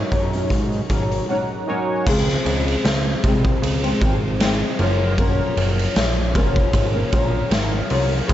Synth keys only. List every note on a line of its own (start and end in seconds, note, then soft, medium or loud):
0.00 1.67 D#4 medium
0.00 1.68 F#4 medium
0.00 1.69 A#4 medium
0.00 1.69 C#5 medium
1.29 1.65 F#5 medium
1.67 1.98 D#4 medium
1.67 1.98 F#4 medium
1.67 1.98 A#4 medium
1.67 1.99 C#5 medium
1.67 2.04 G#5 medium